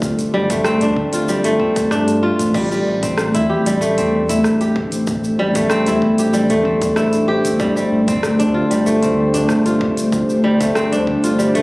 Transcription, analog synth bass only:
Already playing: G1
0.33 G1
0.82 D2
1.13 G1
1.44 G1
1.91 G2
2.40 A1
2.86 A1
3.34 E2
3.66 A1
3.97 E2
4.44 A1
4.92 A1
5.39 A1
5.87 E2
6.19 A1
6.50 E2
6.97 A1
7.45 G1
7.92 G1
8.40 D2
8.71 G1
9.03 D2
9.49 G1
9.98 G1
10.44 G1
10.92 D2
11.24 G1
11.55 D2

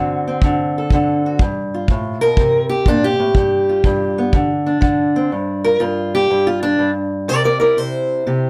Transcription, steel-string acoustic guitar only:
Already playing: D3 C4 F#4
0.28 C4
0.44 D3
0.78 A4
0.93 D3
1.26 F#4
1.42 G2
1.74 F4
1.91 A2
2.21 B2 A#4
2.39 C3
2.69 G4
2.88 A#2 D4
3.04 G4
3.20 A2
3.36 G2
3.69 F4
3.85 G2
4.18 B3
4.34 D3
4.66 D4
4.81 D3
5.16 C4
5.32 G2
5.64 F4 A#4
5.80 G2 F4
6.15 G4
6.30 G2 F4
6.47 F4
6.63 D4
6.79 G2
7.28 C3 A#4 D5
7.44 A#4 D5
7.60 E4 A#4 D5
7.77 C3 C5
8.27 C3 G4

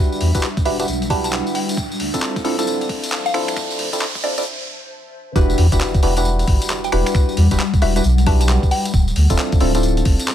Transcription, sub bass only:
0.21 E2
0.35 E1
0.65 E1
0.88 B1
1.77 D1
2.00 D2
2.14 D1
2.44 D1
2.89 F1
3.34 D1
3.79 D2
3.93 D1
4.24 D1
5.36 E1
5.58 E2
5.72 E1
6.03 E1
6.48 G1
6.92 E1
7.37 E2
7.51 E1
7.82 E1
8.04 B1
8.94 D1
9.16 D2
9.30 D1
9.61 D1
10.06 F1

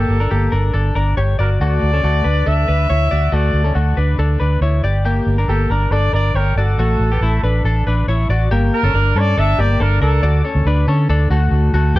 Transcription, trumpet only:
Already playing: A4
1.40 A#4
1.62 D5
2.47 E5
3.34 D5
5.48 A4
5.70 A#4
5.92 D5
6.14 D5
6.36 A#4
6.56 A4
8.74 A#4
9.19 D5
9.39 E5
9.60 D5
9.82 A#4
10.02 A4

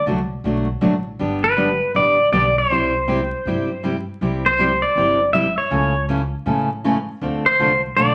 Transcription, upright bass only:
0.06 C2
0.44 B1
0.81 A1
1.19 G1
1.95 A1
2.32 B1
2.70 C2
3.45 G2
4.21 C2
4.96 G1
5.71 C#2
6.46 A2
7.21 D2
7.59 C2
7.97 B1

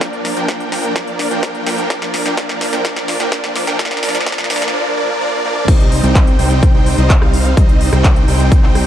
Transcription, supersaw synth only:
0.01 F3 A#3 D4 A#4 D5
0.37 F3 A#3 D4 A#4 G5
0.72 F3 A#3 D4 A#4 G5
0.96 F3 A#3 D4 A#4 D5
1.31 F3 A#3 D4 A#4 G5
1.66 F3 A#3 D4 A#4 G5
1.90 F3 A#3 D4 A#4 D5
2.26 F3 A#3 D4 A#4 G5
2.37 F3 A#3 D4 A#4 D5
2.73 F3 A#3 D4 A#4 G5
2.85 F3 A#3 D4 A#4 D5
3.20 F3 A#3 D4 A#4 G5
3.32 F3 A#3 D4 A#4 D5
3.67 F3 A#3 D4 A#4 G5
3.79 F3 A#3 D4 A#4 D5
4.03 F3 A#3 D4 A#4 D5
4.26 F3 A#3 D4 A#4 D5
4.50 F3 A#3 D4 A#4 D5
4.74 F3 A#3 D4 A#4 D5
4.97 F3 A#3 D4 A#4 D5
5.21 F3 A#3 D4 A#4 D5
5.44 F3 A#3 D4 A#4 D5
5.68 G3 C4 D#4 C5 D#5
6.04 G3 C4 D#4 C5 G5
6.39 G3 C4 D#4 C5 G5
6.74 G3 C4 D#4 C5 G5
6.98 G3 C4 D#4 C5 D#5
7.22 G3 C4 D#4 C5 F5
7.57 G3 C4 D#4 C5 D#5
7.93 G3 C4 D#4 C5 G5
8.28 G3 C4 D#4 C5 G5
8.63 G3 C4 D#4 C5 G5

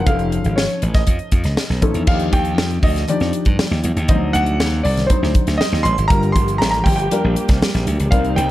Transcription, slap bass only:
0.07 F1
0.45 G#1
0.82 A1
1.07 F2
1.32 F2
1.45 C#2
1.70 B1
1.82 A1
1.95 E2
2.07 D#2
2.33 D#2
2.58 F2
2.83 D2
3.21 F2
3.46 G2
3.71 D#2
3.84 E2
3.96 D#2
4.09 D2
4.35 D2
4.60 D#2
4.85 C2
5.23 D2
5.47 D2
5.72 D#2
5.85 A1
5.98 G#1
6.10 G1
6.35 G1
6.61 A1
6.86 G1
7.24 A#1
7.49 C2
7.74 A#1
7.87 D2
8.00 C#2
8.12 C2
8.37 C2

